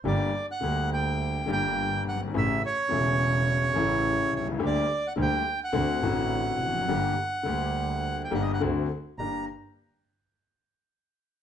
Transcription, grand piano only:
\new Staff \with { instrumentName = "Grand piano" } { \clef bass \time 4/4 \key g \minor \tempo 4 = 105 << { <g,, g, d g bes g'>8 r8 <d, d g bes g'>4. <g,, g, d g bes g'>4. | <a,, a, cis e a e'>8 r8 <e,, e, cis e a e'>4. <a,, a, cis e a e'>4. | <d, d g bes g'>8 r8 <d, d g bes g'>8 r8 <d, d a c' fis'>8 <a,, a, d a c' fis'>4. | <g,, g, d g bes g'>8 r8 <d, d g bes g'>4. <g,, g, d g bes g'>8 <d, d a c' fis'>8 r8 |
<g, bes d' g'>8 r2. r8 | } \\ { r2. r8 r32 fis,,32 g,,32 aes,,32 | r2. r8 r32 b,,32 c,32 cis,32 | r2. r8 r32 e,32 f,32 fis,32 | r1 |
r1 | } >> }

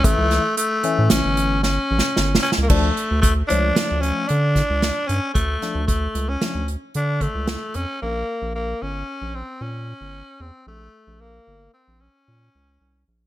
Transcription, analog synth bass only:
\new Staff \with { instrumentName = "Analog synth bass" } { \clef bass \time 5/4 \key d \minor \tempo 4 = 113 a,,16 cis,8 r4 a,16 a,,16 g,,4~ g,,16 a,,16 r16 g,,8 r16 cis,16 | d,8 r16 d,8. cis,8 r16 d,8 r16 d8. cis,8 r16 g,16 r16 | d,8 r16 d,8. cis,8 r16 d,8 r16 d8. cis,8 r16 f,16 r16 | bes,,8 r16 bes,,8. g,,8 r16 bes,,8 r16 bes,8. g,,8 r16 e,16 r16 |
bes,,8 r16 bes,,8. g,,8 r16 bes,,8 r16 bes,8 des,8 c,8 bes,,8 | }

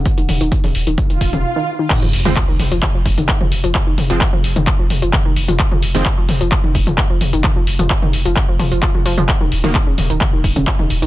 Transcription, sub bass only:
\new Staff \with { instrumentName = "Sub bass" } { \clef bass \time 4/4 \key ees \dorian \tempo 4 = 130 r16 ees,,16 ees,,16 ees,,16 r16 ees,,16 ees,,16 ees,,16 r16 ees,,16 ees,,16 ees,,16 r4 | r16 f,,16 f,,16 f,,16 r16 f,,16 f,,16 f,,16 r16 f,,16 f,,16 f,,16 r16 f,,16 f,,16 f,,16 | r16 f,,16 f,,16 f,,16 r16 f,,16 f,,16 f,,16 r16 f,,16 f,,16 f,,16 r16 f,,16 f,,16 f,,16 | r16 f,,16 f,,16 f,,16 r16 f,,16 f,,16 f,,16 r16 f,,16 f,,16 f,,16 r16 f,,16 f,,16 f,,16 |
r16 f,,16 f,,16 f,,16 r16 f,,16 f,,16 f,,16 r16 f,,16 f,,16 f,,16 r16 f,,16 f,,16 f,,16 | r16 ees,,16 ees,,16 ees,,16 r16 ees,,16 ees,,16 ees,,16 r16 ees,,16 ees,,16 ees,,16 r16 ees,,16 ees,,16 ees,,16 | }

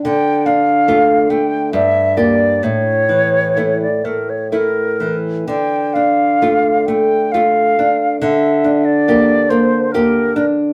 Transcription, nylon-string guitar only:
\new Staff \with { instrumentName = "Nylon-string guitar" } { \time 3/4 \key d \minor \tempo 4 = 68 d8 d'8 <a f'>8 a8 g,8 <bes g'>8 | a,8 e8 <a e'>8 a8 <a e'>8 e8 | d8 d'8 <a f'>8 a8 <a f'>8 d'8 | d8 d'8 <bes g'>8 bes8 <bes g'>8 d'8 | }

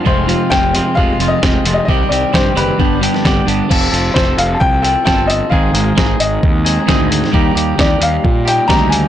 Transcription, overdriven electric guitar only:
\new Staff \with { instrumentName = "Overdriven electric guitar" } { \time 4/4 \key f \dorian \tempo 4 = 132 <f, c f aes c' f'>8 <f, c f aes c' f'>8 <f, c f aes c' f'>8 <f, c f aes c' f'>8 <f, c f aes c' f'>8 <f, c f aes c' f'>8 <f, c f aes c' f'>8 <f, c f aes c' f'>8 | <c ees g c' g'>8 <c ees g c' g'>8 <c ees g c' g'>8 <c ees g c' g'>8 <g, d g b d' g'>8 <g, d g b d' g'>8 <g, d g b d' g'>8 <g, d g b d' g'>8 | <f c' f' a'>8 <c' f' a'>8 <f c' f' a'>4. <c' f' a'>8 <f c' f' a'>8 <c' f' a'>8 | <aes, ees aes c' ees' aes'>8 <aes c' ees' aes'>8 <aes c' ees' aes'>4. <aes c' ees' aes'>8 <aes, ees aes c' ees' aes'>8 <aes c' ees' aes'>8 |
<ees g bes ees' g'>8 <bes ees' g'>8 <g bes ees' g'>4. <bes ees' g'>8 <ees g bes ees' g'>8 <bes ees' g'>8 | }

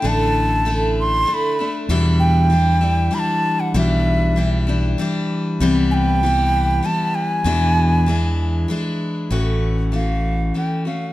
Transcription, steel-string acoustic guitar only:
\new Staff \with { instrumentName = "Steel-string acoustic guitar" } { \time 3/4 \key e \minor \tempo 4 = 97 <d a d' e'>4 <d a d' e'>4 <d a d' e'>8 <a d' e'>8 | <e, b, e g d' e'>4 <e g d' e'>8 <e g d' e'>8 <e g d' e'>4 | <e, b, e g d' e'>4 <e g d' e'>8 <e g d' e'>8 <e g d' e'>4 | <c e g b e'>4 <e g b e'>4 <e g b e'>4 |
<e, b, e gis d' e'>4 <e gis d' e'>4 <e gis d' e'>4 | \key a \mixolydian <a, e a cis' fis'>4 <e a cis' fis'>4 <e a cis'>8 <a cis' fis'>8 | }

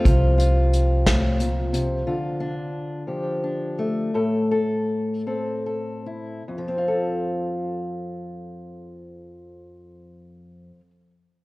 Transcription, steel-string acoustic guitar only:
\new Staff \with { instrumentName = "Steel-string acoustic guitar" } { \time 6/8 \key f \major \tempo 4. = 52 << { <c' f'>8 f'2~ f'8 | f'8 d'4 g'8 d'8 a8 | a'8 a'4 a'8 a'8 e'8 | <f c' f' a'>2.~ |
<f c' f' a'>2. | } \\ { c4. a,8 bes,8 c8 | d4. f4. | a,4. c'4. | f,2.~ |
f,2. | } >> }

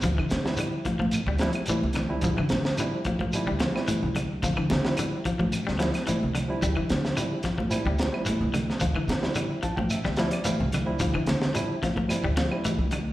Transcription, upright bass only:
\new Staff \with { instrumentName = "Upright bass" } { \clef bass \time 4/4 \key d \minor \tempo 4 = 109 d,16 d16 d8 r4 r16 d,8 r8 c,8 r16 | d,16 d16 d8 r4 r16 d,8 r8 c,8 r16 | d,16 d16 d8 r4 r16 d,8 r8 c,8 r16 | d,16 d16 d8 r4 r16 d,8 r8 c,8 r16 |
d,16 d16 d8 r4 r16 d,8 r8 c,8 r16 | d,16 d16 d8 r4 r16 d,8 r8 c,8 r16 | }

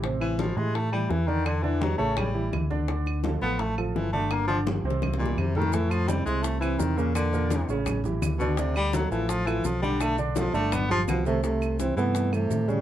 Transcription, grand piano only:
\new Staff \with { instrumentName = "Grand piano" } { \time 4/4 \key a \minor \tempo 4 = 168 <c c' c''>4 <e e' g'>8 <e e' g'>4 <e e' g'>4 <d d' d''>8~ | <d d' d''>8 <d d' d''>8 <g g' b'>8 <cis cis' cis''>4 <e e' g'>4 <d d' d''>8 | <d d' d''>4 <f f' a'>8 <f f' a'>4 <f f' a'>4 <d d' d''>8~ | <d d' d''>8 <d d' d''>8 <f f' g'>8 <c c' c''>4 <e e' g'>4 <a, a a'>8 |
<a, a a'>4 <c c' e'>8 <c c' e'>4 <c c' e'>4 <bes, bes bes'>8~ | <bes, bes bes'>8 <bes, bes bes'>8 <d d' e'>8 <cis cis' cis''>4 <e e' g'>4 <d d' d''>8 | <d d' d''>4 <f f' a'>8 <f f' a'>4 <f f' a'>4 <d d' d''>8~ | <d d' d''>8 <d d' d''>8 <f f' a'>8 <d d' d''>4 <f f' g'>4 <c c' c''>8 |
\key c \major <c c' c''>4 <e e' g'>8 <c a a'>4 <e e' g'>4 <des des' des''>8 | }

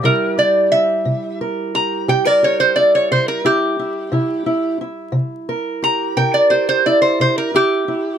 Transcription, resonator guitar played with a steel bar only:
\new Staff \with { instrumentName = "Resonator guitar played with a steel bar" } { \time 12/8 \key c \major \tempo 4. = 59 bes'8 d''8 e''4 r8 bes''8 g''16 d''16 cis''16 c''16 d''16 cis''16 c''16 bes'16 g'4~ | g'4 r4. bes''8 g''16 d''16 c''16 c''16 d''16 c''16 c''16 bes'16 g'4 | }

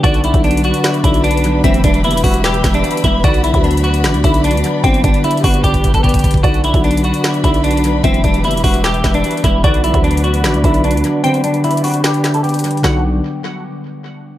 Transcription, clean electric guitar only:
\new Staff \with { instrumentName = "Clean electric guitar" } { \time 4/4 \key b \minor \tempo 4 = 150 fis'8 e'8 d'8 fis'4 e'8 d'4 | c'8 d'8 e'8 fis'8 g'8. d'8. e'8 | fis'8 e'8 d'8 fis'4 e'8 d'4 | c'8 d'8 e'8 fis'8 g'8. a'16 g'4 |
fis'8 e'8 d'8 fis'4 e'8 d'4 | c'8 d'8 e'8 fis'8 g'8. d'8. e'8 | fis'8 e'8 d'8 fis'4 e'8 d'4 | c'8 d'8 e'8 fis'8 g'8. a'16 g'4 |
fis'8 r2. r8 | }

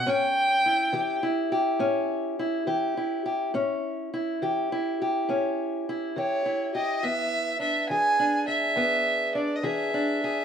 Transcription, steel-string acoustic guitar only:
\new Staff \with { instrumentName = "Steel-string acoustic guitar" } { \time 12/8 \key a \mixolydian \tempo 4. = 69 << { cis'4 e'8 g'8 e'8 g'8 cis'4 e'8 g'8 e'8 g'8 | cis'4 e'8 g'8 e'8 g'8 cis'4 e'8 g'8 e'8 g'8 | b4 d'8 gis'8 d'8 gis'8 b4 d'8 gis'8 d'8 gis'8 | } \\ { a,4 r8 e4 r8 a,4 r8 e4 r8 | a,4 r8 e4 r8 a,4 r8 e4 r8 | e,4 r8 e4 r8 e,4 r8 e4 r8 | } >> }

